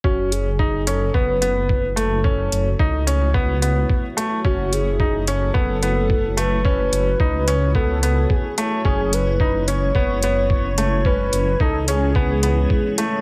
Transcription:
<<
  \new Staff \with { instrumentName = "Soft synth lead" } { \time 4/4 \key fis \dorian \tempo 4 = 109 fis'8 gis'4 a'8 b'4. a'8~ | a'4. r2 r8 | fis'8 gis'4 a'2 b'8~ | b'2 a'4 gis'8. r16 |
gis'8 b'4 cis''2~ cis''8 | b'4 a'8 gis'2 r8 | }
  \new Staff \with { instrumentName = "Ambient pad" } { \time 4/4 \key fis \dorian << { cis''1~ | cis''1~ | cis''1~ | cis''1~ |
cis''1~ | cis''1 | } \\ { <a e' fis'>1~ | <a e' fis'>1~ | <a e' fis'>1~ | <a e' fis'>1 |
<gis cis'>1~ | <gis cis'>1 | } >> }
  \new Staff \with { instrumentName = "Grand piano" } { \time 4/4 \key fis \dorian cis'4 dis'8 cis'8 b8 b4 a8 | cis'4 dis'8 cis'8 b8 b4 a8 | cis'4 dis'8 cis'8 b8 b4 a8 | cis'4 dis'8 cis'8 b8 b4 a8 |
cis'4 dis'8 cis'8 b8 b4 a8 | cis'4 dis'8 cis'8 b8 b4 a8 | }
  \new Staff \with { instrumentName = "Detuned saw bass" } { \clef bass \time 4/4 \key fis \dorian fis,,2 fis,,2~ | fis,,8 fis,,8 cis,2 r4 | fis,,2 fis,,2~ | fis,,8 fis,,8 cis,2 r4 |
fis,,2 fis,,2~ | fis,,8 fis,,8 cis,2 r4 | }
  \new DrumStaff \with { instrumentName = "Drums" } \drummode { \time 4/4 bd8 hh8 bd8 hh8 bd8 hh8 bd8 hh8 | bd8 hh8 bd8 hh8 bd8 hh8 bd8 hh8 | bd8 hh8 bd8 hh8 bd8 hh8 bd8 hh8 | bd8 hh8 bd8 hh8 bd8 hh8 bd8 hh8 |
bd8 hh8 bd8 hh8 bd8 hh8 bd8 hh8 | bd8 hh8 bd8 hh8 bd8 hh8 bd8 hh8 | }
>>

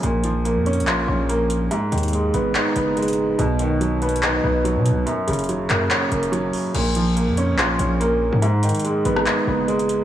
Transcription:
<<
  \new Staff \with { instrumentName = "Felt piano" } { \time 4/4 \key bes \phrygian \tempo 4 = 143 bes,8 f8 bes8 des'8 f'8 des'8 bes4 | aes,8 ees8 aes8 ces'8 ees'8 ces'8 aes4 | b,8 dis8 fis8 b8 dis'8 b8 fis4 | ges,8 des8 ges8 bes8 des'8 bes8 ges4 |
bes,8 f8 bes8 des'8 f'8 des'8 bes4 | aes,8 ees8 aes8 ces'8 ees'8 ces'8 aes4 | }
  \new Staff \with { instrumentName = "808-style bass" } { \clef bass \time 4/4 \key bes \phrygian bes,,4~ bes,,16 f,8~ f,32 bes,,8~ bes,,32 bes,,4. | r8 ees,4 aes,,8 r8 ges,,4. | b,,2~ b,,8 b,,8. b,16. b,,16. | r8 ges,,4 ges,8 r8 ges,,4 r8 |
bes,,4~ bes,,16 f,8~ f,32 bes,,8~ bes,,32 bes,,4~ bes,,16 aes,16~ | aes,8. r8. aes,,8 r8 ges,,4. | }
  \new DrumStaff \with { instrumentName = "Drums" } \drummode { \time 4/4 hh8 hh8 \tuplet 3/2 { hh16 r16 r16 hh16 hh16 hh16 } <hc hh>4 hh8 hh8 | hh8 hh32 hh32 hh32 hh32 hh8 hh8 <hc hh>8 hh8 hh32 hh32 hh32 hh8 r32 | hh8 hh8 \tuplet 3/2 { hh16 r16 r16 hh16 hh16 hh16 } <hc hh>4 hh8 hh8 | hh8 hh32 hh32 hh32 hh32 hh8 <hc hh>8 <hc hh>8 hh16 hh16 hh8 hho8 |
<cymc hh>8 hh8 hh8 hh8 <hc hh>8 hh8 hh4 | hh8 <hh hho>32 hh32 hh32 hh32 hh8 hh16 ss16 <hc hh>4 hh16 hh16 hh8 | }
>>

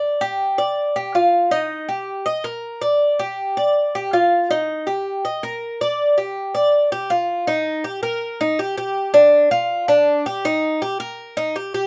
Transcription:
\new Staff \with { instrumentName = "Cuban tres" } { \time 4/4 \key ees \major \tempo 4 = 161 d''8 g'4 d''4 g'8 f'4 | ees'4 g'4 ees''8 bes'4 d''8~ | d''8 g'4 d''4 g'8 f'4 | ees'4 g'4 ees''8 bes'4 d''8~ |
d''8 g'4 d''4 g'8 f'4 | ees'4 g'8 bes'4 ees'8 g'8 g'8~ | g'8 d'4 f'4 d'4 g'8 | ees'4 g'8 bes'4 ees'8 g'8 g'8 | }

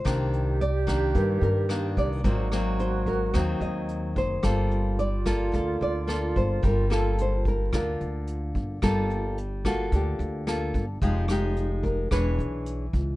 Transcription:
<<
  \new Staff \with { instrumentName = "Nylon-string guitar" } { \time 4/4 \key g \minor \tempo 4 = 110 c''4 d''4 bes'8 bes'4 d''8~ | d''4 c''8 bes'4 ees''4 c''8~ | c''4 d''4 a'8 d''4 c''8 | bes'8 a'8 c''8 bes'8 bes'4. r8 |
r4. fis'8 g'4. r8 | r4. bes'8 b'4. r8 | }
  \new Staff \with { instrumentName = "Alto flute" } { \time 4/4 \key g \minor g'1 | ges'2.~ ges'8 r8 | f'1~ | f'2.~ f'8 r8 |
r1 | r1 | }
  \new Staff \with { instrumentName = "Nylon-string guitar" } { \time 4/4 \key g \minor << { <ees bes d'>4 r8 <ees bes d'>4. <ees bes d'>4 | <ges bes c'>8 <ges bes c'>4. <ges bes c'>2 | <bes f' a'>4 r8 <bes f' a'>4. <bes f' a'>4~ | <bes f' a'>8 <bes f' a'>4. <bes f'>2 |
<bes f' a'>4 r8 <bes f' a'>4. <bes f' a'>8 r8 | <aes ees' g'>8 <aes ees' g'>4. <d' gis' cis''>4. r8 | } \\ { c2 g,2 | aes,2 ees2 | g2 d2 | g2 d2 |
g2 d2 | f2 e2 | } >> }
  \new Staff \with { instrumentName = "Upright bass" } { \clef bass \time 4/4 \key g \minor c,2 g,8 g,4 c,8 | aes,,2 ees,8 ees,4 ges,,8 | g,,2 d,8 d,4 g,,8 | g,,2 d,8 d,4 g,,8 |
g,,2 d,8 d,4 g,,8 | f,,2 e,,8 b,,4 cis,8 | }
  \new DrumStaff \with { instrumentName = "Drums" } \drummode { \time 4/4 <hh bd ss>8 hh8 hh8 <hh bd ss>8 <hh bd>8 hh8 <hh ss>8 <hh bd>8 | <hh bd>8 <hh ss>8 hh8 <hh bd>8 <hh bd ss>8 hh8 hh8 <hh bd>8 | <hh bd ss>8 hh8 hh8 <hh bd ss>8 <hh bd>8 hh8 <hh ss>8 <hh bd>8 | <hh bd>8 <hh ss>8 hh8 <hh bd>8 <hh bd ss>8 hh8 hh8 <hh bd>8 |
<hh bd ss>8 hh8 hh8 <hh bd ss>8 <hh bd>8 hh8 <hh ss>8 <hh bd>8 | <hh bd>8 <hh ss>8 hh8 <hh bd>8 <hh bd ss>8 hh8 hh8 <hh bd>8 | }
>>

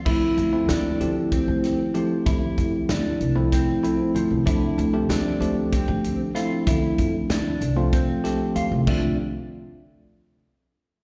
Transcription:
<<
  \new Staff \with { instrumentName = "Vibraphone" } { \time 7/8 \key d \minor \tempo 4 = 95 e'2.~ e'8~ | e'2.~ e'8 | d'2.~ d'8~ | d'2. r8 |
f'8 r2. | }
  \new Staff \with { instrumentName = "Clean electric guitar" } { \time 7/8 \key d \minor e'4 d'4 c'4 f8 | e'4 d'4 c'4 f8 | e'4 d'4 c'4 f'8 | e'4 d'4 c'4 f'8 |
d'8 r2. | }
  \new Staff \with { instrumentName = "Tine electric piano" } { \time 7/8 \key d \minor <f a c' e'>8. <f a c' e'>8. <f a c' g'>4. <f a c' g'>8~ | <f a c' g'>4. r16 <f a c' e'>8. <f a c' e'>4 | <f a c' d'>8. <f a c' g'>8. <f a c' g'>4. <f a c' e'>8~ | <f a c' e'>4. r16 <f a c' f'>8. <f a c' g'>4 |
<f a c' e''>8 r2. | }
  \new Staff \with { instrumentName = "Upright bass" } { \clef bass \time 7/8 \key d \minor d,16 r16 d,8 d,16 r16 d,8 r16 d,8 r8. | d16 r16 f,16 r16 d,16 r16 c,8 r4 d,16 c,16 | d,16 r16 d,8 d,16 r16 d,8 r16 d,8 r8. | d16 r16 f,16 r16 d,16 r16 c,8 r4 d,16 c,16 |
d,8 r2. | }
  \new DrumStaff \with { instrumentName = "Drums" } \drummode { \time 7/8 <cymc bd>8 hh8 <hh sn>8 hh8 <hh bd>8 <hh sn>8 hh8 | <hh bd>8 <hh bd>8 <hh sn>8 hh8 <hh bd sn>8 hh8 hh8 | <hh bd>8 hh8 <hh sn>8 hh8 <hh bd>8 hh8 <hh sn>8 | <hh bd>8 <hh bd>8 <hh sn>8 hh8 <hh bd>8 <hh sn>8 hh8 |
<cymc bd>4 r4 r4. | }
>>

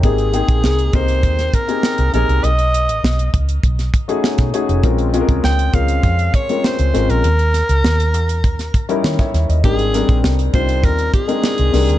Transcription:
<<
  \new Staff \with { instrumentName = "Alto saxophone" } { \time 4/4 \key aes \lydian \tempo 4 = 100 aes'4. c''4 bes'4 bes'8 | dis''4. r2 r8 | r4 g''8 f''4 des''8 c''8. bes'16~ | bes'2~ bes'8. r4 r16 |
aes'4 r8 c''8 bes'8 aes'4. | }
  \new Staff \with { instrumentName = "Grand piano" } { \time 4/4 \key aes \lydian << { bes'16 r2. r8. | r1 | r1 | r2. des''16 <des'' fes''>8 ees''16~ |
ees''16 r2. r8. | } \\ { <bes c' ees' g' aes'>8 <bes c' ees' aes' g''>8. r16 <bes c' ees' g' bes'>4 r16 <bes c' ees' g' aes'>8. <bes c' ees' g' aes'>8 | r2 r8. <a cis' dis' fis' gis'>8. <a cis' dis' fis' gis'>8 | <aes c' des' f' bes'>8 <aes c' des' f' aes' bes'>8. r16 <aes c' des' f' bes'>4 r16 <aes c' des' f' bes'>8. <aes c' des' f' bes'>8 | r2 r8. <g des' ees' fes' bes'>8. r8 |
<g c' d' ees' bes'>8 <g c' d' ees' bes'>8. r16 <g c' d' ees' f'>4 r16 <aes c' d' ees' bes'>8. <g c' d' ees' bes'>8 | } >> }
  \new Staff \with { instrumentName = "Fingered electric bass" } { \clef bass \time 4/4 \key aes \lydian aes,,8. bes,,16 c,8 c,8 ees,8 r8. c,16 bes,,16 c,16 | b,,8. a,,16 b,,8 cis,8 b,,8 r8. b,16 r16 f,,16 | bes,,8. c,16 des,8 des,8 f,8 r8. des,16 aes,,16 bes,,16 | ees,8. des,16 ees,8 fes,8 ees,8 r8 ees16 r16 ees,16 ees,16 |
aes,,8. bes,,16 c,8 c,8 ees,8 r8. c,16 c,16 d,16 | }
  \new DrumStaff \with { instrumentName = "Drums" } \drummode { \time 4/4 <hh bd>16 hh16 hh16 <hh bd>16 sn16 hh16 <hh bd>16 hh16 <hh bd>16 <hh sn>16 <hh bd>16 hh16 sn16 hh16 hh16 hh16 | hh16 hh16 hh16 hh16 sn16 hh16 <hh bd>16 hh16 <hh bd>16 <hh sn>16 <hh bd>16 hh16 sn16 <hh bd sn>16 hh16 hh16 | <hh bd>16 hh16 hh16 <hh bd>16 sn16 hh16 <hh bd>16 hh16 <hh bd>16 hh16 <hh bd>16 hh16 sn16 hh16 <hh sn>16 hh16 | hh16 hh16 <hh sn>16 hh16 sn16 hh16 hh16 hh16 <hh bd>16 <hh sn>16 <hh bd>16 hh16 sn16 <hh bd sn>16 <hh sn>16 hh16 |
<hh bd>16 hh16 <hh sn>16 <hh bd>16 sn16 hh16 <hh bd>16 hh16 <hh bd>16 hh16 <hh bd>16 hh16 sn16 hh16 <hho sn>16 hh16 | }
>>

